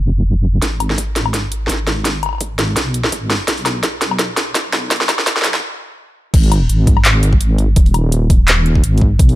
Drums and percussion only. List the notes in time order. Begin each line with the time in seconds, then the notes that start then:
0.62 kick, snare, closed hi-hat
0.80 closed hi-hat, low woodblock
0.90 snare
0.98 kick, closed hi-hat
1.16 snare, closed hi-hat
1.26 low woodblock
1.34 kick, snare, closed hi-hat
1.52 closed hi-hat
1.67 kick, snare, closed hi-hat
1.73 snare
1.87 snare, closed hi-hat
2.05 kick, snare, closed hi-hat
2.23 closed hi-hat, low woodblock
2.26 low woodblock
2.29 low woodblock
2.33 low woodblock
2.35 low woodblock
2.38 kick, closed hi-hat, low woodblock
2.59 snare, closed hi-hat
2.76 kick, snare, closed hi-hat
2.94 closed hi-hat
3.04 snare
3.12 kick, closed hi-hat
3.30 snare, closed hi-hat
3.48 kick, snare, closed hi-hat
3.58 open hi-hat
3.66 snare, closed hi-hat, low woodblock
3.83 kick, snare, closed hi-hat
4.02 snare, closed hi-hat
4.11 low woodblock
4.19 kick, snare, closed hi-hat
4.37 snare, closed hi-hat
4.55 kick, snare, closed hi-hat
4.73 snare, closed hi-hat
4.91 kick, snare, closed hi-hat
4.96 open hi-hat
5.01 snare
5.09 snare, closed hi-hat, low woodblock
5.19 snare
5.27 kick, snare, closed hi-hat
5.36 snare
5.42 snare
5.44 snare, closed hi-hat
5.47 snare
5.54 snare
6.34 kick, closed hi-hat, crash
6.43 open hi-hat
6.52 closed hi-hat, low woodblock
6.69 closed hi-hat
6.87 kick, closed hi-hat
6.97 low woodblock
7.05 clap, closed hi-hat
7.23 closed hi-hat
7.33 kick
7.41 closed hi-hat
7.58 closed hi-hat
7.76 kick, closed hi-hat
7.86 open hi-hat
7.94 closed hi-hat, low woodblock
8.12 closed hi-hat
8.30 kick, closed hi-hat
8.48 clap, closed hi-hat
8.66 closed hi-hat
8.75 kick
8.84 closed hi-hat
8.98 kick, closed hi-hat
9.19 kick, closed hi-hat
9.29 open hi-hat